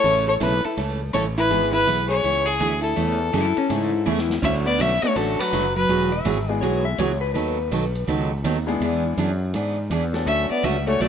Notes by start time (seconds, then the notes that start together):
Already playing: A4 C#5
0.04 A1 C#3 E3 A3 C#4 E4 A4 C#5, ride
0.28 A4 C#5
0.40 B1 C#3 E3 A3 C#4 E4 A4 B4, hi-hat pedal, ride
0.64 E4 A4, ride
0.77 C#2 C#3 E3 A3 C#4 A4, ride
1.13 A1 C#3 E3 A3 C#4 A4 C#5, hi-hat pedal, ride
1.37 E4 B4, ride
1.50 G#1 E3 G#3 B3 E4 G#4 B4, ride
1.72 E4 B4
1.87 B1 E3 B3 E4 G#4, hi-hat pedal, ride
2.09 G#4 C#5, ride
2.23 C#2 E3 B3 E4 G#4, ride
2.45 E4 G#4
2.60 D2 E3 B3 E4 G#4, hi-hat pedal, ride
2.82 E4 A4, ride
2.96 E2 C#3 E3 A3 C#4 G#4, ride
3.33 F#2 C#3 E3 A3 C#4 E4 G#4, hi-hat pedal, ride
3.56 E3 C#4 E4 A4, muted fretless electric bass stroke, ride
3.69 G#2 C#3 E3 A3 C#4 E4 G#4, ride
4.06 E2 C#3 E3 A3 C#4 E4 G#4, hi-hat pedal
4.18 snare
4.30 snare
4.42 D2 D3 F#3 A3 C#4 F#4 E5, kick, crash
4.66 B3 D5
4.79 B1 D3 F#3 A3 C#4 F#4 E5, hi-hat pedal, ride
5.02 A3 C#4 D4 F#4 A4 C#5, muted fretless electric bass stroke
5.15 A1 D3 F#3 A3 C#4 F#4 A4, ride
5.40 F#3 B4, muted fretless electric bass stroke
5.52 F#1 D3 F#3 A3 C#4 F#4, hi-hat pedal, ride
5.76 F#3 B4
5.89 E1 E3 F#3 B3 F#4 G#4, ride
6.12 E5, ride
6.25 G#1 E3 F#3 B3 F#4 G#4, hi-hat pedal, ride
6.49 G#3 B3 E4 F#4 G#4
6.61 B1 E3 F#3 B3 F#4 G#4 C#5, ride
6.85 E5
6.98 C#2 E3 F#3 B3 F#4 G#4 C#5, hi-hat pedal, ride
7.21 B4
7.34 D#2 D#3 F#3 B3 D#4 A4 B4, ride
7.71 B1 D#3 F#3 B3 D#4 A4, hi-hat pedal, ride
7.95 ride
8.07 C#2 D#3 F#3 B3 D#4 A4, ride
8.44 D#2 D#3 F#3 B3 D#4 A4, hi-hat pedal, ride
8.67 G#3 B3 D4 E4 G#4, ride
8.81 E2 E3 B3 D4 G#4, ride
9.17 F#2 E3 B3 D4 G#4, hi-hat pedal, ride
9.54 G#2 E3 B3 D4 G#4, ride
9.90 E2 E3 B3 D4 G#4, hi-hat pedal, ride
10.12 A3 C#4 D4 F#4 A4, snare, ride
10.27 D2 D3 F#3 A3 C#4 F#4 E5, ride
10.50 B3 D5, muted fretless electric bass stroke
10.63 C#2 D3 F#3 A3 C#4 F#4 E5, hi-hat pedal, ride
10.87 A3 C#4 D4 F#4 A4 C#5, ride
11.00 B1 D3 F#3 A3 C#4 F#4 D5, ride